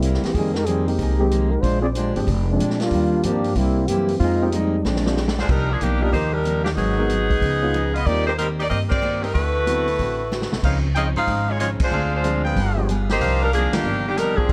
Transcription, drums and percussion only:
0.02 closed hi-hat
0.14 snare
0.23 snare, open hi-hat
0.34 kick, open hi-hat
0.55 snare
0.66 closed hi-hat
0.88 open hi-hat
0.99 kick, open hi-hat
1.31 closed hi-hat
1.63 kick, open hi-hat
1.95 closed hi-hat
2.16 open hi-hat
2.27 kick, open hi-hat
2.60 closed hi-hat
2.70 snare
2.80 snare, open hi-hat
2.91 kick, open hi-hat
3.23 closed hi-hat
3.44 open hi-hat
3.55 kick, open hi-hat
3.88 closed hi-hat
4.08 open hi-hat
4.20 kick, open hi-hat
4.52 closed hi-hat
4.85 snare
4.96 snare
5.06 snare
5.17 snare
5.28 snare
5.38 snare
5.49 kick, crash
5.81 closed hi-hat
6.13 kick, open hi-hat
6.45 closed hi-hat
6.66 snare, open hi-hat
6.77 kick, open hi-hat
7.10 closed hi-hat
7.30 kick, open hi-hat
7.42 kick, open hi-hat
7.74 closed hi-hat
7.95 open hi-hat
8.06 kick, open hi-hat
8.38 closed hi-hat
8.60 open hi-hat
8.71 kick, open hi-hat
8.92 kick, crash
9.24 open hi-hat
9.35 kick, open hi-hat
9.67 closed hi-hat
9.88 open hi-hat
9.99 kick, open hi-hat
10.32 snare
10.42 snare
10.53 snare
10.63 kick, crash
10.96 closed hi-hat
11.16 open hi-hat
11.27 kick, open hi-hat
11.60 closed hi-hat
11.80 kick, crash
12.24 closed hi-hat
12.56 kick, open hi-hat
12.89 closed hi-hat
13.09 snare, open hi-hat
13.21 kick, open hi-hat
13.53 closed hi-hat
13.73 snare, ride
14.17 snare, closed hi-hat
14.38 kick
14.49 kick, open hi-hat

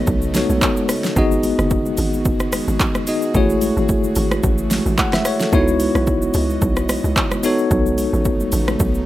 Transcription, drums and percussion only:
0.07 kick, shaker
0.22 shaker
0.34 snare, open hi-hat, high conga, shaker
0.50 high conga, shaker
0.62 kick, clap, low conga, shaker
0.77 high conga, shaker
0.89 cross-stick, open hi-hat, shaker
1.04 snare, shaker
1.16 kick, low conga, shaker
1.31 high conga, shaker
1.43 open hi-hat, high conga, shaker
1.59 cross-stick, shaker
1.70 kick, low conga, shaker
1.86 high conga, shaker
1.97 open hi-hat, low conga, shaker
2.13 high conga, shaker
2.25 kick, shaker
2.40 cross-stick, shaker
2.52 cross-stick, open hi-hat, high conga, shaker
2.68 high conga, shaker
2.80 kick, clap, low conga, shaker
2.95 cross-stick, high conga, shaker
3.07 open hi-hat, shaker
3.22 shaker
3.34 kick, low conga, shaker
3.50 high conga, shaker
3.61 open hi-hat, high conga, shaker
3.77 shaker
3.89 kick, low conga, shaker
4.04 high conga, shaker
4.15 open hi-hat, low conga, shaker
4.31 cross-stick, high conga, shaker
4.43 kick, shaker
4.58 shaker
4.71 snare, open hi-hat, high conga, shaker
4.86 high conga, shaker
4.98 kick, clap, low conga, shaker
5.13 cross-stick, snare, high conga, shaker
5.25 cross-stick, open hi-hat, shaker
5.40 snare, shaker
5.53 kick, low conga, shaker
5.68 high conga, shaker
5.80 open hi-hat, high conga, shaker
5.95 cross-stick, shaker
6.07 kick, low conga, shaker
6.22 high conga, shaker
6.34 open hi-hat, low conga, shaker
6.50 high conga, shaker
6.62 kick, shaker
6.76 cross-stick, shaker
6.89 cross-stick, open hi-hat, high conga, shaker
7.04 high conga, shaker
7.16 kick, clap, low conga, shaker
7.31 cross-stick, high conga, shaker
7.43 open hi-hat, shaker
7.58 shaker
7.71 kick, low conga, shaker
7.86 high conga, shaker
7.98 open hi-hat, high conga, shaker
8.14 shaker
8.25 kick, low conga, shaker
8.40 high conga, shaker
8.52 open hi-hat, low conga, shaker
8.68 cross-stick, high conga, shaker
8.80 kick, shaker
8.94 shaker

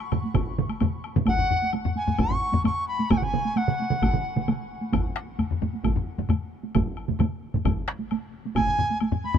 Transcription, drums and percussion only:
0.00 high woodblock
0.12 taiko low-mid, taiko mid, taiko high, high woodblock
0.23 taiko high
0.35 taiko, taiko low-mid, taiko mid, taiko high, high woodblock
0.58 taiko low-mid, taiko mid
0.69 taiko high, high woodblock
0.80 taiko low-mid, taiko mid, taiko high, high woodblock
1.04 high woodblock
1.16 taiko low-mid, taiko mid, taiko high
1.27 taiko, taiko low-mid, taiko high, high woodblock
1.39 taiko low-mid
1.51 taiko low-mid
1.62 taiko high
1.73 taiko high, high woodblock
1.85 taiko low-mid
1.96 taiko high
2.08 taiko low-mid, taiko high
2.18 taiko, taiko high, high woodblock
2.31 taiko low-mid
2.53 taiko low-mid, taiko high
2.65 taiko low-mid, taiko high, high woodblock
2.99 taiko high
3.10 taiko, taiko mid, taiko high, high woodblock
3.22 taiko mid
3.34 taiko mid
3.45 taiko high
3.56 taiko high, high woodblock
3.68 taiko mid
3.79 taiko high
3.90 taiko mid, taiko high
4.02 taiko, taiko high, high woodblock
4.14 taiko mid
4.36 taiko mid, taiko high
4.48 taiko mid, taiko high, high woodblock
4.83 taiko high
4.93 taiko, taiko low-mid, taiko high, high woodblock
5.16 taiko rim
5.39 taiko low-mid, taiko high, high woodblock
5.51 taiko low-mid
5.61 taiko low-mid, taiko high
5.73 taiko high
5.84 taiko, taiko high, high woodblock
5.96 taiko low-mid
6.18 taiko low-mid, taiko high
6.29 taiko low-mid, taiko high, high woodblock
6.64 taiko high
6.75 taiko, taiko low-mid, taiko mid, taiko high, high woodblock
6.97 high woodblock
7.09 taiko low-mid, taiko mid, taiko high
7.20 taiko low-mid, taiko mid, taiko high, high woodblock
7.54 taiko low-mid, taiko mid, taiko high
7.65 taiko, taiko low-mid, taiko mid, taiko high, high woodblock
7.88 taiko rim
8.00 taiko high
8.11 taiko high, high woodblock
8.45 taiko high
8.55 taiko, taiko low-mid, taiko high, high woodblock
8.67 taiko low-mid
8.79 taiko low-mid
8.90 taiko high
9.00 taiko high, high woodblock
9.12 taiko low-mid
9.24 taiko high
9.34 taiko low-mid

